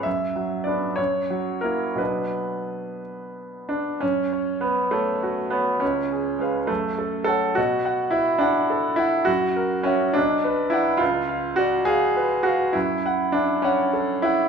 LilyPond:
\new Staff \with { instrumentName = "Grand piano" } { \time 6/8 \key b \minor \tempo 4. = 68 << { fis,8 fis8 <b d'>8 fis,8 fis8 <ais e'>8 | <b, fis b d'>2. | \key fis \minor fis,8 cis''8 b'8 cis''8 fis'8 cis''8 | cis,8 gis'8 <b' eis''>8 fis,8 a'8 <cis'' fis''>8 |
b,8 fis''8 e''8 fis''8 a'8 fis''8 | fis,8 ais'8 <e'' fis''>8 b,,8 b'8 <d'' fis''>8 | cis,8 eis''8 d''8 eis''8 b'8 eis''8 | fis,8 fis''8 e''8 fis''8 a'8 fis''8 | } \\ { e''4 d''8 cis''4 ais'8 | b'4. r4 d'8 | cis'4 b8 a4 b8 | cis'4 gis8 a4 a'8 |
fis'4 e'8 d'4 e'8 | fis'4 cis'8 d'4 e'8 | eis'4 fis'8 gis'4 fis'8 | e'4 d'8 cis'8 r8 e'8 | } >> }